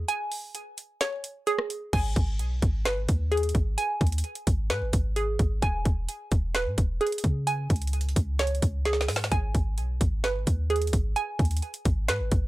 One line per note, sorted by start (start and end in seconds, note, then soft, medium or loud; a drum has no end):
0.08 1.92 G#5 loud
0.08 closed hi-hat medium
0.32 open hi-hat medium
0.55 closed hi-hat medium
0.78 closed hi-hat medium
1.01 1.93 C#5 loud
1.01 snare loud
1.01 closed hi-hat medium
1.24 closed hi-hat medium
1.47 1.93 G#4 medium
1.47 closed hi-hat medium
1.59 cross-stick loud
1.70 closed hi-hat medium
1.93 2.15 G#1 loud
1.93 3.77 G#5 loud
1.93 kick loud
1.93 closed hi-hat medium
1.93 crash medium
2.16 2.41 G#1 loud
2.16 kick loud
2.16 closed hi-hat medium
2.39 2.61 B1 loud
2.39 closed hi-hat medium
2.62 2.87 G#1 loud
2.62 kick loud
2.62 closed hi-hat medium
2.85 2.98 G1 loud
2.85 4.69 B4 medium
2.85 snare loud
2.85 closed hi-hat medium
2.97 3.08 G#1 loud
3.09 3.53 D#2 loud
3.09 kick loud
3.09 closed hi-hat medium
3.32 5.15 G#4 medium
3.32 closed hi-hat soft
3.37 closed hi-hat medium
3.43 closed hi-hat medium
3.49 closed hi-hat medium
3.55 3.77 G#1 loud
3.55 kick loud
3.55 closed hi-hat medium
3.78 5.61 G#5 loud
3.78 closed hi-hat medium
4.01 4.23 D#2 loud
4.01 kick loud
4.01 closed hi-hat soft
4.07 closed hi-hat medium
4.12 closed hi-hat medium
4.18 closed hi-hat medium
4.24 closed hi-hat soft
4.35 closed hi-hat medium
4.47 4.72 G#1 loud
4.47 kick medium
4.47 closed hi-hat medium
4.70 4.83 G#2 loud
4.70 5.62 B4 loud
4.70 snare loud
4.70 closed hi-hat medium
4.82 4.93 G#1 loud
4.93 5.38 G#1 loud
4.93 kick loud
4.93 closed hi-hat medium
5.16 5.62 G#4 medium
5.16 closed hi-hat medium
5.39 5.61 G#1 loud
5.39 kick loud
5.39 closed hi-hat medium
5.62 5.85 E1 loud
5.62 7.46 G#5 loud
5.62 kick loud
5.62 closed hi-hat medium
5.85 6.08 E1 loud
5.85 kick loud
5.85 closed hi-hat medium
6.09 closed hi-hat medium
6.32 6.68 E1 loud
6.32 kick loud
6.32 closed hi-hat medium
6.55 7.47 B4 loud
6.55 snare loud
6.55 closed hi-hat medium
6.66 6.77 G#2 loud
6.78 7.00 E1 loud
6.78 kick loud
6.78 closed hi-hat medium
7.01 7.47 G#4 medium
7.01 closed hi-hat soft
7.07 closed hi-hat medium
7.12 closed hi-hat medium
7.18 closed hi-hat medium
7.24 7.68 C#3 loud
7.24 kick medium
7.24 closed hi-hat medium
7.47 9.30 G#5 loud
7.47 closed hi-hat medium
7.70 8.14 C#2 loud
7.70 kick loud
7.70 closed hi-hat medium
7.76 closed hi-hat medium
7.82 closed hi-hat medium
7.87 closed hi-hat medium
7.93 closed hi-hat medium
8.01 closed hi-hat medium
8.09 closed hi-hat soft
8.16 8.61 C#2 loud
8.16 kick medium
8.16 closed hi-hat medium
8.39 9.32 C#5 medium
8.39 snare loud
8.39 closed hi-hat medium
8.47 closed hi-hat medium
8.55 closed hi-hat soft
8.62 9.10 C#2 loud
8.62 kick loud
8.62 closed hi-hat medium
8.85 9.32 G#4 medium
8.85 snare medium
8.85 closed hi-hat medium
8.93 snare medium
9.01 snare medium
9.08 9.30 G#2 loud
9.08 snare medium
9.08 open hi-hat medium
9.16 snare medium
9.24 snare medium
9.32 9.54 G#1 loud
9.32 11.15 G#5 loud
9.32 kick loud
9.32 closed hi-hat medium
9.55 9.79 G#1 loud
9.55 kick loud
9.55 closed hi-hat medium
9.78 10.00 B1 loud
9.78 closed hi-hat medium
10.01 10.25 G#1 loud
10.01 kick medium
10.01 closed hi-hat medium
10.24 10.37 G1 loud
10.24 12.07 B4 loud
10.24 snare loud
10.24 closed hi-hat medium
10.35 10.46 G#1 loud
10.47 10.91 D#2 loud
10.47 kick loud
10.47 closed hi-hat medium
10.70 12.48 G#4 medium
10.70 closed hi-hat soft
10.76 closed hi-hat medium
10.82 closed hi-hat medium
10.87 closed hi-hat medium
10.93 11.15 G#1 loud
10.93 kick medium
10.93 closed hi-hat medium
11.16 12.48 G#5 loud
11.16 closed hi-hat medium
11.39 11.61 D#2 loud
11.39 kick loud
11.39 closed hi-hat soft
11.45 closed hi-hat medium
11.51 closed hi-hat medium
11.57 closed hi-hat medium
11.62 closed hi-hat soft
11.74 closed hi-hat medium
11.85 12.10 G#1 loud
11.85 kick medium
11.85 closed hi-hat medium
12.08 12.22 G#2 loud
12.08 12.48 B4 loud
12.08 snare loud
12.08 closed hi-hat medium
12.20 12.31 G#1 loud
12.32 12.48 G#1 loud
12.32 kick loud
12.32 closed hi-hat medium